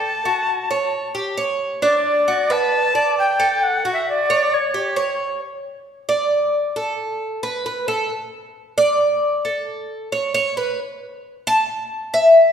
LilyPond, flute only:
\new Staff \with { instrumentName = "Flute" } { \time 4/4 \key d \major \tempo 4 = 134 a''2~ a''8 r4. | d''4. a''4. g''4 | \tuplet 3/2 { fis''4 e''8 } d''4 cis''4. r8 | r1 |
r1 | r1 | r1 | }